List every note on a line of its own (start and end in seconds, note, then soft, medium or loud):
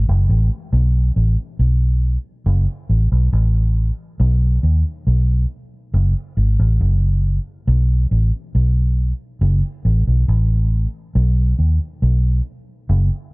0.08 0.26 F#1 medium
0.29 0.48 A1 medium
0.73 1.10 B1 loud
1.16 1.35 A1 medium
1.59 2.16 B1 medium
2.46 2.65 F#1 loud
2.89 3.09 A1 medium
3.12 3.30 B1 medium
3.33 3.90 A1 medium
4.20 4.57 B1 loud
4.63 4.83 D#2 medium
5.07 5.44 B1 medium
5.94 6.13 F#1 medium
6.37 6.56 G#1 medium
6.59 6.77 A1 medium
6.80 7.37 F#1 medium
7.67 8.05 B1 loud
8.11 8.30 A1 medium
8.55 9.12 B1 medium
9.41 9.61 F#1 loud
9.85 10.04 A1 medium
10.07 10.25 B1 medium
10.28 10.85 A1 medium
11.15 11.53 B1 loud
11.59 11.78 D#2 medium
12.02 12.40 B1 medium
12.89 13.09 F#1 medium